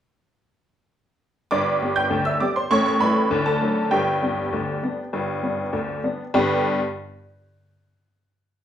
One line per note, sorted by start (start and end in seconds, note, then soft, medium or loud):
1.51 1.77 G1 medium
1.51 1.77 G2 medium
1.51 1.94 D5 medium
1.51 1.96 D6 medium
1.82 1.98 G3 soft
1.82 1.98 B3 soft
1.82 1.99 G4 soft
1.96 2.24 G5 medium
1.96 2.26 G6 medium
2.10 2.36 D2 medium
2.10 2.36 D3 medium
2.25 2.40 E5 medium
2.25 2.41 E6 medium
2.40 2.57 G3 soft
2.40 2.58 B3 soft
2.40 2.58 G4 soft
2.40 2.55 D5 medium
2.40 2.56 D6 medium
2.56 2.71 C5 medium
2.56 2.71 C6 medium
2.71 2.97 A1 medium
2.71 2.97 A2 medium
2.71 2.85 C#5 medium
2.71 2.84 C#6 loud
2.86 3.01 C#5 medium
2.86 3.01 C#6 medium
3.00 3.18 G3 soft
3.00 3.18 A3 soft
3.00 3.18 E4 soft
3.00 3.43 B4 medium
3.00 3.46 B5 medium
3.31 3.57 D2 medium
3.31 3.57 D3 medium
3.46 3.89 A4 medium
3.46 3.91 A5 medium
3.62 3.78 F#3 soft
3.62 3.78 A3 soft
3.62 3.78 D4 soft
3.91 4.17 G1 medium
3.91 4.17 G2 medium
3.91 5.70 G4 medium
3.91 5.73 G5 medium
4.22 4.39 G3 soft
4.22 4.39 B3 soft
4.22 4.39 D4 soft
4.52 4.78 D2 medium
4.52 4.78 D3 medium
4.83 4.99 G3 soft
4.83 5.00 B3 soft
4.83 5.00 D4 soft
5.13 5.39 G1 medium
5.13 5.39 G2 medium
5.43 5.60 G3 soft
5.43 5.60 B3 soft
5.43 5.60 D4 soft
5.73 5.99 D2 medium
5.73 5.99 D3 medium
6.04 6.20 G3 soft
6.04 6.21 B3 soft
6.04 6.21 D4 soft
6.34 6.68 G2 loud
6.34 6.68 D3 medium
6.34 6.68 B3 medium
6.34 6.68 D4 medium
6.34 6.68 G4 medium
6.34 6.68 B4 medium